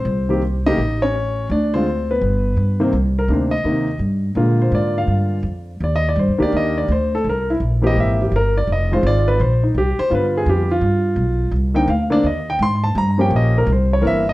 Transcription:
X:1
M:4/4
L:1/8
Q:"Swing" 1/4=167
K:Cm
V:1 name="Grand piano"
[Cc]3 [Ee]2 [^C^c]3 | [Dd] [Cc]2 [=B,=B]4 z | z B c e3 z2 | z c d f3 z2 |
(3d e d c d e d c =A | B =E z _e =e G B d | e c d =B c E G c | =B A G F4- F |
z g f d e g c' =a | b g e B c _d =e _e |]
V:2 name="Grand piano"
z [E,B,CG] z [_D,=A,B,G] z4 | z [D,A,F] z4 z [C,^D,B,C] | z2 [C,E,B,D] z [C,E,B,E] z3 | [D,A,B,F]4- [D,A,B,F] z3 |
z3 [E,B,DG]3 z2 | z3 [=E,B,CG]3 z2 | z [E,A,CF]3 z4 | [D,G,=B,F]3 z4 z |
z [D,B,CE] z [D,B,CD] z4 | z [F,B,_DG]3 z2 [=E,B,CB] z |]
V:3 name="Upright bass" clef=bass
C,,4 =A,,,4 | D,,4 G,,,2 G,,2 | C,,2 D,,2 E,,2 G,,2 | B,,2 A,,2 G,,2 F,,2 |
E,,2 (3G,, E,, D,, E,,2 D,,2 | C,,2 B,,,2 A,,,2 G,,,2 | F,,,2 A,,,2 B,,,2 C,, z | G,,2 F,,2 G,,2 =B,,,2 |
C,,2 D,,2 E,,2 A,,2 | G,,2 B,,,2 C,,2 G,,,2 |]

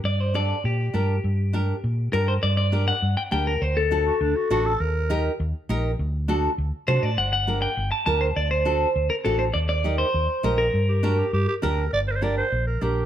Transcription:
X:1
M:4/4
L:1/16
Q:1/4=202
K:Gm
V:1 name="Clean electric guitar"
d2 c2 d4 G8- | G12 B2 c2 | d2 d4 ^f4 g2 g2 B2 | c2 A12 z2 |
z16 | z12 c2 d2 | ^f2 f4 g4 a2 a2 c2 | d2 c8 B2 A2 c2 |
d2 d4 c8 B2- | B12 z4 | z16 |]
V:2 name="Clarinet"
z16 | z16 | z16 | z6 ^F2 D2 F2 F2 A2 |
B8 z8 | z16 | z16 | z16 |
z16 | z2 G2 ^F2 G2 G2 G2 B4 | d2 c/2 B/2 c d2 c4 B2 G4 |]
V:3 name="Nylon-string guitar"
z4 [DGA]2 z6 [DGB]2 z2 | z4 [DGB]2 z6 [DGB]2 z2 | z4 [DGB]2 z6 [DGB]2 z2 | z4 [D^FA]2 z6 [DFA]2 z2 |
z4 [EGB]2 z6 [EGB]2 z2 | z4 [D^FA]2 z6 [DFA]2 z2 | z4 [DGB]2 z6 [DGB]2 z2 | z4 [D^FA]2 z6 [DFA]2 z2 |
z4 [EGB]2 z6 [EGB]2 z2 | z4 [DGB]2 z6 [DGB]2 z2 | z4 [DGB]2 z6 [DGB]2 z2 |]
V:4 name="Fingered electric bass" clef=bass
G,,8 B,,4 G,,4 | G,,8 B,,4 G,,4 | G,,8 G,,2 z2 D,,4 | D,,8 D,,2 z2 A,,,4 |
E,,8 E,,2 z2 B,,,4 | D,,8 D,,2 z2 C,2 A,,2 | G,,,8 G,,,2 z2 D,,4 | D,,8 D,,2 z2 A,,,4 |
E,,8 E,,2 z2 B,,,4 | G,,8 G,,2 z2 D,,4 | G,,,8 B,,,4 B,,,4 |]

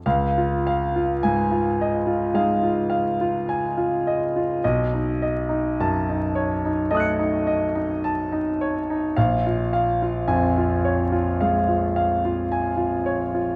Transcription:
X:1
M:4/4
L:1/16
Q:1/4=53
K:Db
V:1 name="Grand piano"
f F f F a F e F f F f F a F e F | e E e E =a E d E e E e E a E d E | f F f F a F d F f F f F a F d F |]
V:2 name="Grand piano" clef=bass
D,,4 A,,4 [A,E]8 | _C,,4 G,,4 [=A,E=ae'g'd'']8 | B,,,4 F,,4 A,8 |]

